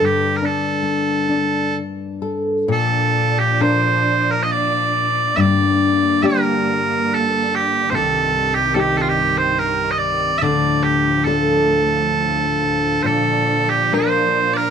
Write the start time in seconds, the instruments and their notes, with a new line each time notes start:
Already playing: nylon-string guitar D3 D4 A4
0.00 nylon-string guitar G2
0.05 bagpipes G4
0.36 bagpipes A#4
0.42 nylon-string guitar D4, bagpipes A4
0.83 nylon-string guitar A#3
1.29 nylon-string guitar D4
2.22 nylon-string guitar A4
2.68 nylon-string guitar A#2, string section A#2 F3 D4, bagpipes A4
3.39 bagpipes G4
3.61 nylon-string guitar A#3 D4 A#4, bagpipes C5
4.31 bagpipes A#4
4.43 bagpipes D#5
4.52 bagpipes D5
5.35 string section G2 D3 A#3, nylon-string guitar G2, bagpipes E5
5.40 bagpipes D5
6.22 nylon-string guitar A#3 D4 G4, bagpipes A#4 E5
7.14 bagpipes A4
7.55 bagpipes G4
7.90 nylon-string guitar C3, bagpipes C5
7.95 string section C2 G2 D#3, bagpipes A4
8.55 bagpipes G4
8.75 nylon-string guitar C4 D#4 G4, bagpipes A4
8.80 bagpipes G4
8.97 bagpipes A4
9.02 bagpipes F4
9.09 bagpipes G4
9.38 bagpipes C5
9.59 bagpipes A#4
9.91 bagpipes D#5
9.98 bagpipes D5
10.38 string section A2, bagpipes D5 E5
10.42 string section D2 F3, nylon-string guitar D3
10.83 bagpipes G4
11.24 nylon-string guitar D4 F4 A4, bagpipes A4
13.02 nylon-string guitar A#2, string section A#2 D4, bagpipes A4 C5
13.70 bagpipes G4
13.92 nylon-string guitar A#3 D4 A#4, bagpipes C5
14.53 bagpipes A#4 D5